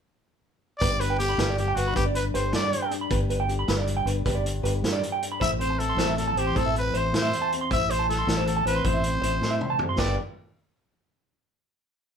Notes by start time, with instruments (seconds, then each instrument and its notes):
0.79 fingered electric bass G1, nylon-string guitar G2 G4, clean electric guitar B4, trumpet D5, kick, closed hi-hat
1.00 nylon-string guitar D4, clean electric guitar B4, trumpet B4, closed hi-hat
1.10 clean electric guitar G5
1.18 nylon-string guitar D3 B3, trumpet G4, closed hi-hat
1.29 nylon-string guitar D4, clean electric guitar B5
1.38 fingered electric bass G1, clean electric guitar B4, snare, closed hi-hat
1.49 clean electric guitar D5
1.58 nylon-string guitar G2, trumpet G4, closed hi-hat
1.68 clean electric guitar G5
1.75 fingered electric bass G1, nylon-string guitar D4, trumpet F#4, clean electric guitar B4, closed hi-hat
1.88 clean electric guitar B5
1.94 fingered electric bass G1, nylon-string guitar G2 D4, trumpet G4, clean electric guitar B4, kick, closed hi-hat
2.06 clean electric guitar D5
2.14 nylon-string guitar D4, trumpet B4, closed hi-hat
2.34 fingered electric bass G1, nylon-string guitar D3 G4, clean electric guitar B4, trumpet C5, closed hi-hat
2.53 fingered electric bass G2, trumpet D5, snare, closed hi-hat
2.63 clean electric guitar D5
2.72 nylon-string guitar G2, closed hi-hat
2.82 clean electric guitar G5
2.90 nylon-string guitar D4, closed hi-hat
3.01 clean electric guitar B5
3.09 fingered electric bass G1, nylon-string guitar G2 G4, clean electric guitar B4, kick, closed hi-hat
3.30 nylon-string guitar D4, clean electric guitar B4, closed hi-hat
3.40 clean electric guitar G5
3.47 nylon-string guitar D3 G4, closed hi-hat
3.59 clean electric guitar B5
3.68 fingered electric bass G1, clean electric guitar B4, snare, closed hi-hat
3.77 clean electric guitar D5
3.86 nylon-string guitar G2, closed hi-hat
3.97 clean electric guitar G5
4.05 fingered electric bass G1, nylon-string guitar D4, clean electric guitar B4, closed hi-hat
4.25 fingered electric bass G1, nylon-string guitar G2 G4, clean electric guitar B4, kick, closed hi-hat
4.35 clean electric guitar D5
4.44 nylon-string guitar D4, closed hi-hat
4.62 fingered electric bass G1, nylon-string guitar D3 G4, clean electric guitar B4, closed hi-hat
4.83 fingered electric bass G2, snare, closed hi-hat
4.93 clean electric guitar D5
5.02 nylon-string guitar G2, closed hi-hat
5.12 clean electric guitar G5
5.22 nylon-string guitar D4, closed hi-hat
5.32 clean electric guitar B5
5.40 fingered electric bass A1, nylon-string guitar A2 E4, clean electric guitar C5, trumpet E5, kick, closed hi-hat
5.59 nylon-string guitar C4, trumpet C5, clean electric guitar C5, closed hi-hat
5.70 muted clean electric guitar stroke
5.78 nylon-string guitar E3 E4, trumpet A4, closed hi-hat
5.89 clean electric guitar C6
5.97 fingered electric bass A1, clean electric guitar C5, snare, closed hi-hat
6.08 clean electric guitar E5
6.17 nylon-string guitar E2, trumpet A4, closed hi-hat
6.28 clean electric guitar A5
6.35 fingered electric bass A1, nylon-string guitar C4, trumpet G4, clean electric guitar C5, closed hi-hat
6.47 clean electric guitar C6
6.55 fingered electric bass A1, nylon-string guitar A2 E4, trumpet A4, clean electric guitar C5, kick, closed hi-hat
6.66 clean electric guitar E5
6.76 nylon-string guitar C4, trumpet B4, closed hi-hat
6.94 fingered electric bass A1, nylon-string guitar E3 E4, clean electric guitar C5, trumpet C5, closed hi-hat
7.13 fingered electric bass A2, trumpet C5, snare, closed hi-hat
7.22 clean electric guitar E5
7.33 nylon-string guitar E2, closed hi-hat
7.42 clean electric guitar A5
7.52 nylon-string guitar C4, closed hi-hat
7.61 clean electric guitar C6
7.71 fingered electric bass A1, nylon-string guitar A2 E4, clean electric guitar C5, trumpet E5, kick, closed hi-hat
7.90 clean electric guitar C5, trumpet C5, muted nylon-string guitar stroke, closed hi-hat
7.99 clean electric guitar A5
8.08 nylon-string guitar E3 E4, trumpet A4, snare, closed hi-hat
8.19 clean electric guitar C6
8.27 fingered electric bass A1, muted clean electric guitar stroke, snare, closed hi-hat
8.38 clean electric guitar C5
8.46 nylon-string guitar E2, trumpet A4, closed hi-hat
8.57 clean electric guitar A5
8.65 fingered electric bass A1, nylon-string guitar C4, trumpet B4, clean electric guitar C5, closed hi-hat
8.76 clean electric guitar C6
8.84 fingered electric bass A1, nylon-string guitar A2 E4, clean electric guitar C5, trumpet C5, kick, closed hi-hat
8.94 clean electric guitar E5
9.03 nylon-string guitar C4, closed hi-hat
9.22 fingered electric bass A1, nylon-string guitar E4, clean electric guitar C5, muted nylon-string guitar stroke, closed hi-hat
9.41 fingered electric bass A2, snare
9.51 clean electric guitar E5
9.61 nylon-string guitar E2, mid tom
9.70 clean electric guitar A5
9.79 nylon-string guitar C4, floor tom
9.89 clean electric guitar C6
9.98 fingered electric bass G1, nylon-string guitar G2 D3 B3, clean electric guitar B4 D5 G5, trumpet D5, kick, snare, splash
10.02 nylon-string guitar D4 G4